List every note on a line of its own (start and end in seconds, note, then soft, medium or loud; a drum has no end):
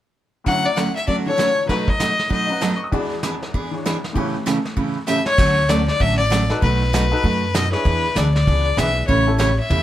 0.44 1.68 D2 medium
0.44 1.24 D3 soft
0.44 0.66 D3 medium
0.44 0.66 F#3 medium
0.44 1.66 F#3 soft
0.44 0.66 A3 medium
0.44 0.66 C#4 medium
0.44 1.70 E4 soft
0.44 0.66 F#4 medium
0.44 0.67 F#5 loud
0.44 brush sweep soft
0.44 kick soft
0.49 1.69 C#5 medium
0.66 0.79 D5 medium
0.76 0.87 D3 medium
0.76 0.87 F#3 medium
0.76 0.88 A3 medium
0.76 0.88 C#4 medium
0.76 0.88 F#4 medium
0.76 0.95 F#5 medium
0.76 snare medium
0.76 hi-hat pedal medium
0.96 1.07 E5 medium
1.07 1.27 D3 medium
1.07 1.27 F#3 medium
1.07 1.27 A3 medium
1.07 1.28 C#4 medium
1.07 1.28 F#4 medium
1.07 1.16 D5 medium
1.07 brush sweep soft
1.07 kick soft
1.26 1.69 D3 soft
1.26 1.69 E3 soft
1.26 1.70 D4 soft
1.26 1.70 A4 medium
1.26 1.66 C#5 loud
1.37 1.49 D3 medium
1.37 1.49 F#3 medium
1.37 1.49 A3 medium
1.37 1.49 C#4 medium
1.37 1.49 F#4 medium
1.37 snare medium
1.37 hi-hat pedal medium
1.66 2.91 B2 soft
1.66 1.89 B2 medium
1.66 2.47 F#3 soft
1.66 1.89 F#3 medium
1.66 2.92 A3 soft
1.66 1.89 A3 medium
1.66 2.93 D#4 soft
1.66 1.91 B4 medium
1.66 brush sweep soft
1.66 kick soft
1.66 snare soft
1.70 1.89 D#4 medium
1.70 1.90 F#4 medium
1.70 2.93 C#5 medium
1.88 2.31 D#5 medium
1.88 kick soft
2.00 2.11 B2 medium
2.00 2.11 F#3 medium
2.00 2.11 A3 medium
2.00 2.11 D#4 medium
2.00 2.11 F#4 medium
2.00 snare medium
2.00 hi-hat pedal medium
2.19 snare soft
2.29 2.50 B2 soft
2.29 2.50 F#3 medium
2.29 2.50 A3 medium
2.29 2.50 D#4 medium
2.29 2.50 F#4 medium
2.29 2.77 D#5 medium
2.29 brush sweep soft
2.29 kick soft
2.47 2.92 F#3 soft
2.47 2.93 C#4 soft
2.47 2.56 D#5 soft
2.51 2.93 B4 medium
2.51 2.64 F#5 soft
2.61 2.72 B2 medium
2.61 2.72 F#3 medium
2.61 2.72 A3 medium
2.61 2.72 D#4 medium
2.61 2.72 F#4 medium
2.61 2.75 A5 medium
2.61 snare medium
2.61 hi-hat pedal medium
2.70 2.82 B5 medium
2.77 2.87 C#6 medium
2.84 2.95 D#6 medium
2.92 4.15 E2 medium
2.92 3.70 E3 medium
2.92 3.12 E3 medium
2.92 4.16 G#3 medium
2.92 3.13 B3 medium
2.92 3.13 D4 medium
2.92 4.16 F#4 medium
2.92 3.13 G#4 medium
2.92 4.16 D5 medium
2.92 brush sweep soft
2.92 kick soft
3.23 3.34 E3 medium
3.23 3.34 B3 medium
3.23 3.34 D4 medium
3.23 3.34 G#4 medium
3.23 snare medium
3.23 hi-hat pedal medium
3.42 snare soft
3.54 3.74 E3 medium
3.54 3.74 B3 medium
3.54 3.74 D4 medium
3.54 3.74 G#4 medium
3.54 brush sweep soft
3.54 kick soft
3.71 4.13 E3 soft
3.71 4.16 D4 soft
3.71 4.16 C#5 soft
3.86 3.96 E3 medium
3.86 3.96 B3 medium
3.86 3.96 D4 medium
3.86 3.96 G#4 medium
3.86 snare medium
3.86 hi-hat pedal medium
4.04 snare soft
4.13 5.37 A2 medium
4.13 4.35 A2 medium
4.13 4.36 C#3 medium
4.13 5.38 E3 medium
4.13 4.36 E3 medium
4.13 4.36 A3 medium
4.13 5.39 B3 medium
4.13 4.36 C#4 medium
4.13 4.36 G4 medium
4.13 5.39 G4 medium
4.13 brush sweep soft
4.13 kick soft
4.18 5.40 C#5 medium
4.46 4.57 A2 medium
4.46 4.57 C#3 medium
4.46 4.57 E3 medium
4.46 4.57 A3 medium
4.46 4.57 C#4 medium
4.46 4.58 G4 medium
4.46 snare medium
4.46 hi-hat pedal medium
4.65 snare soft
4.76 4.97 A2 medium
4.76 4.97 C#3 medium
4.76 4.97 E3 medium
4.76 4.97 A3 medium
4.76 4.97 C#4 medium
4.76 4.97 G4 medium
4.76 brush sweep soft
4.76 kick soft
5.07 5.18 A2 medium
5.07 5.19 C#3 medium
5.07 5.19 E3 medium
5.07 5.19 A3 medium
5.07 5.19 C#4 medium
5.07 5.19 G4 medium
5.07 5.25 E5 loud
5.07 hi-hat pedal medium
5.26 5.71 C#5 loud
5.26 snare medium
5.37 5.88 D2 medium
5.37 5.58 D3 medium
5.37 5.58 F#3 medium
5.37 5.58 A3 medium
5.37 5.58 C#4 medium
5.37 5.59 F#4 medium
5.37 brush sweep medium
5.37 kick medium
5.37 crash medium
5.69 5.80 D3 medium
5.69 5.80 F#3 medium
5.69 5.80 A3 medium
5.69 5.80 C#4 medium
5.69 5.81 F#4 medium
5.69 5.88 D5 medium
5.69 snare medium
5.69 hi-hat pedal medium
5.88 6.03 D5 medium
5.88 snare soft
6.00 6.50 A1 medium
6.00 6.20 D3 medium
6.00 6.20 F#3 medium
6.00 6.20 A3 medium
6.00 6.20 C#4 medium
6.00 6.20 F#4 medium
6.00 6.17 E5 loud
6.00 brush sweep medium
6.00 kick soft
6.17 6.58 D5 loud
6.30 6.41 D3 medium
6.30 6.42 F#3 medium
6.30 6.42 A3 medium
6.30 6.42 C#4 medium
6.30 6.42 F#4 medium
6.30 snare medium
6.30 hi-hat pedal medium
6.49 6.61 D#4 medium
6.49 6.61 F#4 medium
6.49 6.61 A4 medium
6.49 6.61 B4 medium
6.49 snare soft
6.62 7.11 B1 medium
6.62 6.82 B2 medium
6.62 6.82 F#3 medium
6.62 6.82 A3 medium
6.62 6.82 D#4 medium
6.62 6.82 F#4 medium
6.62 7.56 B4 loud
6.62 brush sweep soft
6.62 kick soft
6.93 7.04 B2 medium
6.93 7.04 F#3 medium
6.93 7.04 A3 medium
6.93 7.04 D#4 medium
6.93 7.04 F#4 medium
6.93 snare medium
6.93 hi-hat pedal medium
7.11 7.22 D#4 medium
7.11 7.22 F#4 medium
7.11 7.22 A4 medium
7.11 7.23 B4 medium
7.24 7.73 F#2 medium
7.24 7.44 B2 medium
7.24 7.43 F#3 medium
7.24 7.44 A3 medium
7.24 7.44 D#4 medium
7.24 7.44 F#4 medium
7.24 brush sweep soft
7.24 kick soft
7.54 7.65 B2 medium
7.54 7.65 F#3 medium
7.54 7.65 A3 medium
7.54 7.65 D#4 medium
7.54 7.65 F#4 medium
7.54 7.72 D#5 loud
7.54 snare medium
7.54 hi-hat pedal medium
7.72 8.13 D4 medium
7.72 8.13 E4 medium
7.72 8.13 G#4 medium
7.72 8.18 B4 loud
7.72 8.13 C#5 medium
7.72 snare soft
7.85 8.10 E2 medium
7.85 8.05 E3 medium
7.85 8.05 B3 medium
7.85 8.05 D4 medium
7.85 8.05 G#4 medium
7.85 brush sweep soft
7.85 kick soft
8.15 8.42 D2 medium
8.15 8.27 E3 medium
8.15 8.27 B3 medium
8.15 8.27 D4 medium
8.15 8.27 G#4 medium
8.15 8.34 D5 medium
8.15 snare medium
8.15 hi-hat pedal medium
8.34 8.79 D5 medium
8.34 snare soft
8.47 8.73 C#2 medium
8.47 8.67 E3 medium
8.47 8.67 B3 medium
8.47 8.67 D4 medium
8.47 8.67 G#4 medium
8.47 brush sweep soft
8.47 kick soft
8.77 9.03 B1 medium
8.77 8.88 E3 medium
8.77 8.89 B3 medium
8.77 9.08 D4 medium
8.77 8.89 D4 medium
8.77 9.08 E4 soft
8.77 9.08 G#4 soft
8.77 8.89 G#4 medium
8.77 9.08 B4 medium
8.77 9.07 E5 loud
8.77 snare medium
8.77 hi-hat pedal medium
9.08 9.58 A1 medium
9.08 9.28 C#3 medium
9.08 9.28 E3 medium
9.08 9.28 A3 medium
9.08 9.28 C#4 medium
9.08 9.28 G4 medium
9.08 9.37 C#5 medium
9.08 brush sweep soft
9.08 kick soft
9.27 9.38 C#4 medium
9.27 9.38 E4 medium
9.27 9.38 G4 medium
9.27 9.38 A4 medium
9.38 9.50 C#3 medium
9.38 9.50 E3 medium
9.38 9.50 A3 medium
9.38 9.50 C#4 medium
9.38 9.50 G4 medium
9.38 9.56 C#5 medium
9.38 snare medium
9.38 hi-hat pedal medium
9.60 9.83 E5 medium
9.70 9.83 E2 medium
9.70 9.83 C#3 soft
9.70 9.83 E3 medium
9.70 9.83 A3 medium
9.70 9.83 C#4 medium
9.70 9.83 G4 medium
9.70 mid tom soft